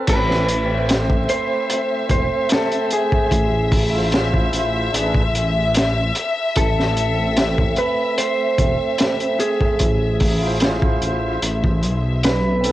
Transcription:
Already playing: tonewheel organ C4 A4 B4
0.07 detuned saw bass A1, clean electric guitar B4, string section E5, kick, closed hi-hat, crash
0.31 snare
0.49 closed hi-hat
0.66 tonewheel organ C4
0.70 tonewheel organ A3
0.74 tonewheel organ C5
0.89 snare, closed hi-hat
1.10 kick
1.29 clean electric guitar C5, closed hi-hat
1.70 closed hi-hat
2.10 detuned saw bass E1, clean electric guitar C5, kick, closed hi-hat
2.50 clean electric guitar A4, snare, closed hi-hat
2.72 closed hi-hat
2.91 clean electric guitar G#4, closed hi-hat
3.12 kick
3.31 detuned saw bass A1, kick, closed hi-hat
3.72 kick, open hi-hat
3.90 tonewheel organ E4
3.94 tonewheel organ F4 C5
4.12 snare, closed hi-hat
4.34 kick
4.53 detuned saw bass A1, closed hi-hat
4.92 detuned saw bass A1, tonewheel organ D4 G#4, closed hi-hat
4.96 tonewheel organ B4
5.14 kick
5.35 closed hi-hat
5.74 snare, closed hi-hat
6.15 closed hi-hat
6.56 detuned saw bass A1, clean electric guitar A4, kick, closed hi-hat
6.80 snare
6.97 closed hi-hat
7.14 tonewheel organ C4
7.18 tonewheel organ A3
7.37 snare, closed hi-hat
7.58 kick
7.76 clean electric guitar B4, closed hi-hat
8.18 clean electric guitar C5, closed hi-hat
8.58 detuned saw bass E1, kick, closed hi-hat
8.98 snare, closed hi-hat
9.20 closed hi-hat
9.40 clean electric guitar G#4, closed hi-hat
9.61 kick
9.79 detuned saw bass A1, kick, closed hi-hat
10.20 kick, open hi-hat
10.38 tonewheel organ E4
10.42 tonewheel organ F4
10.47 tonewheel organ C5
10.60 snare, closed hi-hat
10.82 kick
11.01 detuned saw bass A1, closed hi-hat
11.42 detuned saw bass A1, closed hi-hat
11.64 kick
11.83 detuned saw bass B1, closed hi-hat
12.23 clean electric guitar B4, snare, closed hi-hat
12.61 tonewheel organ C4, closed hi-hat
12.65 tonewheel organ A4

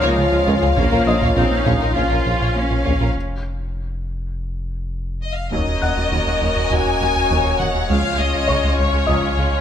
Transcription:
Already playing: sub bass C#2, trombone section F3 C#4, analog synth pad F3 C#4 F4 F5, cello section A#3, viola section D#4, french horn section F4 C#5, violin section F5, felt piano G#5 F6 G#6
0.02 double bass section C#2, analog synth bass C#2, violin section F4 C#5
0.17 analog synth bass C#3, cello section G#3, viola section F4
0.32 double bass section C#2, analog synth bass C#2, violin section F4
0.46 double bass section C#2, analog synth bass C#2, tuba C#2, violin section F4 C#5, taiko
0.61 double bass section C#2, analog synth bass C#2, violin section F4 G#4
0.76 double bass section A#1, sub bass A#1, tuba A#1, analog synth bass A#2, cello section A#3, trombone section A#3, analog synth pad C#4, violin section F4 C#5, viola section F4, taiko
0.91 double bass section A#1, analog synth bass A#3, violin section F4 A#4
1.06 double bass section A#1, tuba A#1, analog synth bass A#3, violin section F4, felt piano D#5 D#6
1.21 double bass section A#1, analog synth bass A#2, violin section F4 C#5, taiko
1.36 double bass section A#1, tuba A#1, analog synth bass A#2, cello section C4, viola section D#4, violin section F4 A#4
1.51 analog synth bass A#3
1.57 cello section C#4
1.66 double bass section A#1, tuba A#1, analog synth bass A#2, violin section F4 C#5, taiko
1.77 cello section D#4, violin section A#4
1.81 double bass section A#1, analog synth bass A#2, violin section F4
1.95 tuba A#1, double bass section A#1, analog synth bass A#2, viola section C#4, violin section F4 C#5, cello section F4, taiko
2.09 double bass section A#1, analog synth bass A#2, violin section F4 A#4
2.24 double bass section A#1, tuba A#1, analog synth bass A#2, violin section F4
2.40 double bass section A#1, analog synth bass A#2, violin section F4 C#5
2.55 analog synth bass A#3, cello section C#4
2.70 double bass section A#1, analog synth bass A#2, violin section F4
2.84 tuba A#1, double bass section A#1, analog synth bass A#2, violin section F4 C#5, taiko
3.00 double bass section A#1, analog synth bass A#2, violin section F4 A#4
3.15 sub bass F1
5.22 violin section D#5
5.33 violin section F5
5.51 sub bass D#1, analog synth bass D#2, cello section D#2, double bass section D#2, trombone section F#3 A#3, viola section F#3 F#4, analog synth pad A#3 C#4 F#4 D#5, french horn section C#4 D#4, violin section A#4 C#5 D#5, taiko
5.67 analog synth bass D#2
5.82 cello section D#2, analog synth bass D#2, double bass section D#2, viola section F#3, felt piano F#5 F#6
5.96 cello section D#2, analog synth bass D#2, viola section F#3
6.11 cello section D#2, analog synth bass D#2, double bass section D#2, viola section F#3
6.26 analog synth bass D#2, cello section D#2, viola section F#3
6.41 cello section D#2, analog synth bass D#2, double bass section D#2, viola section F#3
6.56 cello section D#2, analog synth bass D#2, viola section F#3
6.71 cello section D#2, analog synth bass D#2, double bass section D#2, viola section F#3, trombone section F#3 A#3, french horn section C#4 D#4, violin section G#5
6.86 analog synth bass D#2
7.00 cello section D#2, analog synth bass D#2, double bass section D#2, viola section F#3
7.16 analog synth bass D#2
7.30 cello section D#2, analog synth bass D#2, double bass section D#2, viola section F#3
7.45 analog synth bass D#2, cello section D#2, viola section F#3
7.59 cello section D#2, double bass section D#2, analog synth bass D#3, viola section F#3, violin section F#5
7.74 cello section D#2, analog synth bass D#2, viola section F#3
7.89 cello section C#2, analog synth bass C#2, sub bass C#2, double bass section C#2, trombone section F3 G#3, viola section G#3 C#4, analog synth pad G#3 F4 F5, french horn section C#4 F4, violin section F4 F5
8.04 analog synth bass C#2
8.19 cello section C#2, analog synth bass C#2, double bass section C#2, viola section G#3, violin section D#5
8.34 cello section C#2, analog synth bass C#2, viola section G#3
8.48 cello section C#2, analog synth bass C#2, double bass section C#2, viola section G#3, felt piano C#5 C#6
8.64 analog synth bass C#2, cello section C#2, viola section G#3
8.78 analog synth bass C#2, cello section C#2, double bass section C#2, viola section G#3, violin section C#5
8.93 analog synth bass C#2, cello section C#2, viola section G#3
9.07 analog synth bass C#2, cello section C#2, double bass section C#2, trombone section F3 G#3, viola section G#3, french horn section C#4 F4, felt piano D#5 D#6
9.22 analog synth bass C#2
9.37 analog synth bass C#2, cello section C#2, double bass section C#2, viola section G#3
9.52 analog synth bass C#2

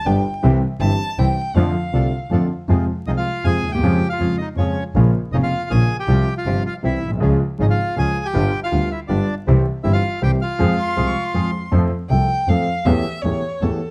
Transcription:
0.05 double bass G1, grand piano G1 G2 D3 G3 B3 G4, bandoneon B3 D4 G4, violin G5
0.42 grand piano C2 C3 E3 G3 C4 G4, double bass C2, bandoneon C4 E4 G4
0.80 double bass G1, grand piano G1 G2 E3 G3 C4 G4, bandoneon C4 E4 G4, violin A5
1.18 double bass C2, grand piano C2 C3 E3 G3 C4 G4, bandoneon C4 E4 G4, violin G5
1.55 double bass F2, grand piano F2 D3 F3 A3 C4 F4, bandoneon D4 F4 A4, violin F5
1.93 double bass C2, grand piano C2 C3 D3 A3 C4 F4, bandoneon D4 F4 A4
2.30 double bass F2, grand piano F2 D3 F3 A3 C4 F4, bandoneon D4 F4 A4
2.68 double bass F2, grand piano F2 C3 F3 G#3 F4, bandoneon C4 F4 G#4
3.07 double bass C2, grand piano C2 C3 F3 G#3 F4, bandoneon C4 D#4 F4 G#4 D#5
3.17 bandoneon F4 F5
3.44 double bass F2, grand piano F2 C3 F3 G#3 F4, bandoneon C4 F4 G#4 G#5
3.64 double bass D#2
3.69 grand piano D2, bandoneon G5
3.74 grand piano D#2, bandoneon G4
3.79 grand piano E2, double bass F2
3.83 grand piano F2 C#3 F3 G#3 F4, bandoneon C#4 F4 G#4
4.09 bandoneon F4 F5
4.19 double bass F2, grand piano F2 C#3 F3 G#3 F4, bandoneon C#4 F4 G#4
4.38 bandoneon D#4 D#5
4.56 double bass F2, grand piano F2 C#3 F3 G#3 F4, bandoneon C#4 F4 G#4 C#5
4.94 double bass A#1, grand piano A#1 A#2 C#3 F3 A#3 F4, bandoneon C#4 F4 A#4
5.32 double bass F1, grand piano F1 F2 C#3 F3 A#3 F4, bandoneon C#4 D#4 F4 A#4 D#5
5.43 bandoneon F4 F5
5.70 double bass A#1, grand piano A#1 A#2 C#3 F3 A#3 F4, bandoneon C#4 F4 G#4 A#4 G#5
5.99 bandoneon G4 G5
6.08 double bass C2, grand piano C2 C3 F3 G3 F4, bandoneon C4 F4 G4
6.37 bandoneon F4 F5
6.45 double bass G1, grand piano G1 G2 C3 F3 G3 F4, bandoneon C4 F4 G4
6.66 bandoneon F4 F5
6.83 grand piano C2 C3 E3 G3 E4, double bass C2, bandoneon C4 E4 G4 E5
7.03 grand piano A#1, double bass B1
7.12 grand piano B1
7.17 grand piano C2 C#2 C#3 F3 G#3 F4, bandoneon C#4 F4
7.21 double bass C#2, bandoneon G#4
7.58 grand piano G#1 G#2 C#3 F3 G#3 F4, double bass G#1, bandoneon C#4 D#4 F4 G#4
7.63 bandoneon D#5
7.70 bandoneon F4 F5
7.96 grand piano C#2 C#3 F3 G#3 F4, double bass C#2, bandoneon C#4 F4 G#4 G#5
8.25 bandoneon G4 G5
8.33 grand piano G1 G2 D3 G3 B3 F4, double bass G1, bandoneon B3 F4 G4
8.64 bandoneon F4 F5
8.71 grand piano D2 D3 G3 B3 F4, double bass D2, bandoneon B3 F4 G4
8.92 bandoneon E4 E5
9.08 grand piano G1 G2 D3 G3 B3 F4, double bass G1, bandoneon B3 D4 F4 G4 D5
9.46 double bass C2, grand piano C2 C3 E3 G3 C4 G4, bandoneon C4 E4 G4
9.83 grand piano G1 G2 E3 G3 C4 G4, double bass G1, bandoneon C4 E4 G4 E5
9.93 bandoneon F4 F5
10.21 grand piano C2 C3 E3 G3 C4 G4, double bass C2, bandoneon C4 E4 G4 G5
10.42 bandoneon F4 F5
10.59 grand piano F2 F3 G#3 C4 G#4, double bass F2, bandoneon C4 F4 G#4
10.78 violin C6
10.96 grand piano C2 C3 F3 G#3 C4 G#4, double bass C2, bandoneon C4 F4 G#4
11.07 violin C#6
11.24 violin C6
11.34 grand piano F2 F3 G#3 C4 G#4, double bass F2, bandoneon C4 F4 G#4
11.72 grand piano F2 F3 A3 C4 A4, double bass F2
12.10 double bass C2, grand piano C2 C3 F3 A3 C4 A4, violin G5
12.48 double bass F2, grand piano F2 F3 A3 C4 A4, violin F5
12.85 double bass E2, grand piano E2 E3 A3 C#4 G4, violin E5
13.22 double bass E2, grand piano E2 E3 A3 C#4, violin C#5
13.26 grand piano G4
13.61 double bass E2, grand piano E2 E3 A3 C#4 G4, violin A4

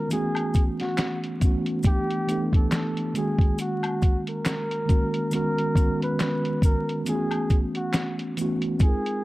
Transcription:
Already playing: tine electric piano D#3 G#3 B3 C#4 F4 F#4, flugelhorn A#4
0.09 tine electric piano E3 A3 B3 C#4, closed hi-hat, maracas
0.13 tine electric piano F#4, flugelhorn G#4
0.35 closed hi-hat, high woodblock
0.54 kick, closed hi-hat, maracas
0.80 flugelhorn F#4, snare, closed hi-hat
0.97 snare, clap, closed hi-hat, maracas
1.24 closed hi-hat
1.40 tine electric piano E3 A3 B3 C#4, kick, closed hi-hat, maracas
1.45 tine electric piano F#4
1.66 closed hi-hat
1.83 tine electric piano E3 A3 B3 D4, kick, closed hi-hat, maracas
1.87 flugelhorn G4
2.11 closed hi-hat
2.27 tine electric piano E3 A3 B3 D4, closed hi-hat, maracas
2.31 tine electric piano A4
2.53 flugelhorn A4, kick, closed hi-hat
2.72 flugelhorn A4, snare, clap, closed hi-hat, maracas
2.97 closed hi-hat
3.14 tine electric piano D#3 G#3 A#3 C#4, flugelhorn G#4, closed hi-hat, maracas
3.18 tine electric piano F#4
3.39 kick, closed hi-hat
3.58 flugelhorn F#4, closed hi-hat, maracas
3.83 closed hi-hat, high woodblock
4.02 kick, closed hi-hat, maracas
4.27 flugelhorn A#4, closed hi-hat
4.45 snare, clap, closed hi-hat, maracas
4.71 closed hi-hat
4.85 tine electric piano D#3 G#3 A#3 C#4, kick, closed hi-hat
4.90 tine electric piano F#4, maracas
5.14 closed hi-hat
5.31 tine electric piano D#3 G#3 B3 C#4, closed hi-hat, maracas
5.35 tine electric piano F#4, flugelhorn A#4
5.58 closed hi-hat
5.74 tine electric piano D#3 G#3 B3 C#4, kick, closed hi-hat, maracas
5.78 tine electric piano F#4
6.02 flugelhorn B4, closed hi-hat
6.19 flugelhorn B4, snare, clap, closed hi-hat, maracas
6.45 closed hi-hat
6.62 flugelhorn A#4, kick, closed hi-hat, maracas
6.89 closed hi-hat
7.05 tine electric piano E3 A3 B3 C#4, closed hi-hat, maracas
7.09 tine electric piano F4, flugelhorn G#4
7.15 tine electric piano F#4
7.31 closed hi-hat, high woodblock
7.50 kick, closed hi-hat, maracas
7.75 flugelhorn F#4, closed hi-hat
7.93 snare, clap, closed hi-hat, maracas
8.19 closed hi-hat
8.37 tine electric piano E3 A3 B3 C#4, closed hi-hat, maracas
8.41 tine electric piano F#4
8.62 closed hi-hat
8.78 tine electric piano G#3 C4 D#4 F4, kick, closed hi-hat, maracas
8.82 tine electric piano G#4, flugelhorn G#4
8.89 tine electric piano A#4
9.06 closed hi-hat

